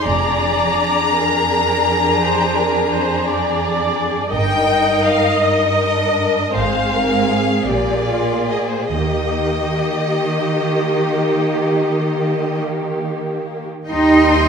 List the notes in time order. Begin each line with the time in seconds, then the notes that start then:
0.05 F1 F2 D4 G#4 D5 A#5
1.14 A#4
2.22 C5
2.56 A#4
2.92 C5
3.27 D5
4.33 G1 G2 D#4 A#4 D#5 G5
5.05 F5
5.43 D#4 A#4 D#5
5.99 D4
6.55 G#1 G#2 C4 G#4 C5 F5
6.93 A#4
7.30 G#4
7.67 A#1 A#2 A#3 G4 G#4 D5
8.07 F4
8.49 G#4 D#5
8.59 D5
8.69 C5
8.80 D5
8.89 D#2 D#3 A#3 G4 D#5
13.89 D#2 G3 D#4 D#5 G5 C6